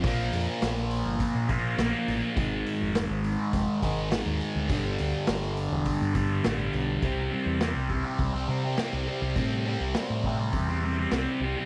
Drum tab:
HH |o-o-o-o-o-o-o-o-|o-o-o-o-o-o-o-o-|o-o-o-o-o-o-o-o-|o---o---o---o---|
SD |----oo------o---|----o-------o---|----oo------o---|----o-------o---|
BD |o-------o-o-----|o-------o-o-----|o-------o-o-----|o-----o-o-------|

HH |o---o---o---o---|
SD |----o-------o---|
BD |o-----o-o-------|